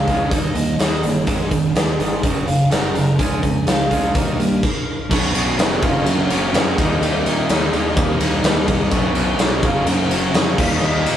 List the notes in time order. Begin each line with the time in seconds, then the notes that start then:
Already playing: F5
0.08 C#2 C#3 F3 G#3 C#4, kick, closed hi-hat
0.31 D#2 D#3 G3 A#3 D#4 D#5, kick, closed hi-hat
0.55 D#2 D#3 G3 A#3, closed hi-hat
0.79 D#2 D#3 G3 A#3 D#4, snare, closed hi-hat
1.03 G1 D#3 G3 A#3, closed hi-hat
1.11 C#5
1.27 G#1 G#2 D#3 G#3, kick, closed hi-hat
1.41 snare
1.51 G#1 G#2 D#3, kick, closed hi-hat
1.75 D#2 G#2 D#3, snare, closed hi-hat
1.98 G#1 G#2 D#3 G#3, closed hi-hat
2.22 F#1 F#2 C#3 F#3, kick, closed hi-hat
2.47 F#1 F#2 C#3 F5, closed hi-hat
2.71 F#1 F#2 C#3 F#3 F#5, snare, closed hi-hat
2.95 F#1 F#2 C#3 A#5, closed hi-hat
3.19 C#2 C#3 F3 G#3 C#4 G#5, kick, closed hi-hat
3.43 C#2 C#3 F3 G#3, kick, closed hi-hat
3.67 C#2 C#3 F3 G#3 F5, snare, closed hi-hat
3.91 C#2 C#3 F3 G#3 C#4, kick, closed hi-hat
4.14 D#2 D#3 G3 A#3 D#4 A#4, kick, closed hi-hat
4.38 G2 D#3 G3 A#3, closed hi-hat
4.63 kick, crash
5.10 B1 B2 F#3 B3 C#4 F#4 B4 C#5 B5, kick, crash
5.34 B1 F#3 B3 C#4, ride
5.57 F1 B2 F#3 B3 C#4 C#5, snare, ride
5.82 F#1 F#2 C#3 F#3 A#3 C#4 F4 A#4 C#5 F5 A#5, kick, ride
6.06 F#2 F#4 F#5, ride
6.29 F#1 F#3 A#3 C#4 F#4 F#5, ride
6.54 F#2 C#3 F#3 A#3 C#4, snare, ride
6.77 D#2 D#3 G3 A#3 D#4 G4 D#5, kick, ride
7.01 D#2 D#3 G3 A#3 D#4, ride
7.25 A#2 G3 A#3 D#4, ride
7.48 D#2 D#3 G3 A#3 D#4, snare, ride
7.72 D#2 G3 A#3 D#4, ride
7.97 D#2, kick, ride
8.20 D#2 G3 A#3 D#4, ride
8.43 D#2 D#3 G3 A#3 D#4, snare, ride
8.68 C2, kick, snare, ride
8.91 B1 B2 F#3 B3 C#4 F#4 B4 C#5 B5, kick, ride
9.14 B1 F#3 B3 C#4, ride
9.38 B1 B2 F#3 B3 C#4 C#5, snare, ride
9.62 F#1 F#2 C#3 F#3 A#3 C#4 F4 F#4 A#4 F5 A#5, kick, ride
9.86 F#2 F#4 F#5, ride
10.10 F#1 F#3 A#3 C#4 F#4 F#5, ride
10.34 F2 F#2 C#3 F#3 A#3 C#4, snare, ride
10.49 F5
10.58 D#2 D#3 G3 A#3 D#4 F4 G4 D#5 F5, kick, crash
10.82 D#2 D#3 G3 A#3 D#4 D#5
11.06 A#2 G3 A#3 D#4, ride